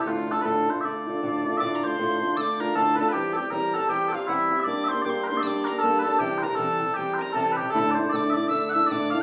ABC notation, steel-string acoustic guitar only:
X:1
M:4/4
L:1/8
Q:"Swing" 1/4=156
K:Dm
V:1 name="Steel-string acoustic guitar"
[D,,A,,D,A,DF] [D,A,DF] [D,,A,,D,A,DF] [D,A,DF] [D,A,DF] [D,A,DF] [D,,A,,D,A,DF] [D,A,DF] | [D,,A,,D,A,DF] [D,A,DF] [D,,A,,D,A,DF] [D,A,DF] [D,A,DF] [D,A,DF] [D,,A,,D,A,DF] [D,A,DF] | [E,G,CG] [G,CG] [E,G,CG] [G,CG] [E,G,CG] [G,CG] [E,G,CG] [G,CG] | [G,B,DG] [B,DG] [G,B,DG] [B,DG] [G,B,DG] [B,DG] [G,B,DG] [B,DG] |
[C,E,G,CG] [G,CG] [C,E,G,CG] [G,CG] [E,G,CG] [G,C] [C,E,G,CG] [G,C] | [D,,A,,D,A,DE] [D,A,DE] [D,,A,,D,A,DE] [D,A,DE] [D,A,DE] [D,A,DE] [D,,A,,D,A,DE] [D,A,DE] |]